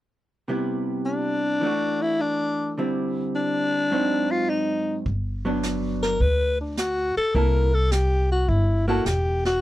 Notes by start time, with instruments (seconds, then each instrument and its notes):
0.48 hollow-body jazz guitar C3 G3 B3 E4
1.06 alto saxophone D4
1.61 hollow-body jazz guitar E3 A3 D4
1.66 hollow-body jazz guitar F#4
2.02 alto saxophone E4
2.21 alto saxophone D4
2.78 hollow-body jazz guitar D3 G3 C4 E4
3.35 alto saxophone D4
3.91 hollow-body jazz guitar G#2 F#3 C4 D#4
4.31 alto saxophone F4
4.49 alto saxophone D#4
5.06 upright bass G1, brush sweep, kick
5.45 hollow-body jazz guitar F#3 B3 D4
5.63 snare, hi-hat pedal
6.03 alto saxophone A#4, snare
6.20 upright bass D2, alto saxophone B4, brush sweep, kick
6.61 alto saxophone D4
6.77 alto saxophone F#4, snare, hi-hat pedal
7.17 alto saxophone A4, muted upright bass stroke
7.35 upright bass C2, hollow-body jazz guitar A#3 E4 A4, alto saxophone A#4, brush sweep, kick
7.74 alto saxophone A4
7.91 alto saxophone G4, snare, hi-hat pedal
8.32 alto saxophone F#4
8.48 upright bass G1, alto saxophone E4, brush sweep, kick
8.88 hollow-body jazz guitar A#3 E4 A4, alto saxophone F#4
9.05 upright bass E1, alto saxophone G4, snare, hi-hat pedal
9.45 alto saxophone F#4, snare